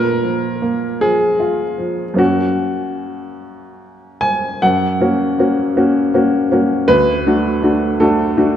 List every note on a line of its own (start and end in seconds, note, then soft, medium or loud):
0.00 2.15 A#2 medium
0.00 1.01 A#4 loud
0.24 0.85 F3 soft
0.62 1.24 A#3 soft
1.01 1.63 F3 soft
1.01 2.19 G#4 medium
1.40 2.03 F4 soft
1.78 2.19 F3 soft
2.14 4.56 F#2 medium
2.14 4.57 A#3 soft
2.14 4.57 C#4 soft
2.18 4.23 F#4 medium
4.21 4.61 G#5 medium
4.62 4.99 F#2 medium
4.62 6.88 F#5 medium
5.01 5.35 A#3 soft
5.01 5.35 C#4 soft
5.01 5.35 F#4 soft
5.39 5.73 A#3 soft
5.39 5.73 C#4 soft
5.39 5.73 F#4 soft
5.77 6.10 A#3 soft
5.77 6.11 C#4 soft
5.77 6.11 F#4 medium
6.14 6.48 A#3 soft
6.14 6.48 C#4 soft
6.14 6.48 F#4 medium
6.52 6.85 A#3 soft
6.52 6.85 C#4 soft
6.52 6.86 F#4 soft
6.88 7.25 D2 medium
6.88 8.00 B4 loud
7.27 7.60 A3 soft
7.27 7.60 D4 soft
7.27 7.60 F#4 medium
7.63 7.97 A3 soft
7.63 7.97 D4 soft
7.63 7.97 F#4 soft
8.00 8.34 A3 medium
8.00 8.34 D4 medium
8.00 8.34 F#4 medium
8.00 8.57 A4 medium
8.37 8.57 A3 medium
8.37 8.57 D4 medium
8.37 8.57 F#4 medium